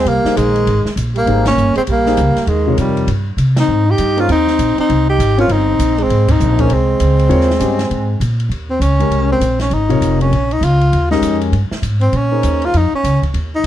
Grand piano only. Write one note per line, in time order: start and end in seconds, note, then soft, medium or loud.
0.25 0.64 A#3 medium
0.25 0.65 D#4 medium
0.25 0.64 G#4 medium
0.25 0.65 C5 medium
1.27 1.44 A#3 medium
1.27 1.44 D#4 medium
1.27 1.44 G#4 medium
1.27 1.44 C5 medium
2.07 2.17 A#3 medium
2.07 2.17 D#4 medium
2.07 2.17 G#4 medium
2.07 2.17 C5 medium
2.67 3.06 C3 medium
2.67 3.06 F4 soft
2.67 3.06 A#4 medium
2.67 3.07 C#5 medium
4.17 4.27 A#3 medium
4.17 4.27 D#4 soft
4.17 4.28 G#4 medium
4.17 4.28 C5 medium
5.38 5.48 C4 medium
5.38 5.49 F4 medium
5.38 5.49 A#4 medium
5.38 5.48 C#5 medium
6.58 6.69 A#3 medium
6.58 6.69 D#4 medium
6.58 6.69 G#4 medium
6.58 6.69 C5 medium
7.29 7.46 C4 medium
7.29 7.46 F4 medium
7.29 7.46 A#4 medium
7.29 7.47 C#5 medium
7.60 7.77 C#4 medium
7.60 7.77 G4 medium
7.60 7.77 C5 medium
7.60 7.77 D#5 medium
8.99 9.39 G#3 medium
8.99 9.39 C#4 soft
8.99 9.39 G4 soft
8.99 9.40 A#4 medium
9.89 10.29 C3 medium
9.89 10.29 F4 medium
9.89 10.29 A#4 medium
9.89 10.30 C#5 medium
11.11 11.50 G#3 medium
11.11 11.51 C#4 medium
11.11 11.51 G4 medium
11.11 11.51 A#4 medium
12.31 12.71 A#3 soft
12.31 12.71 D#4 soft
12.31 12.71 G#4 soft
12.31 12.72 C5 medium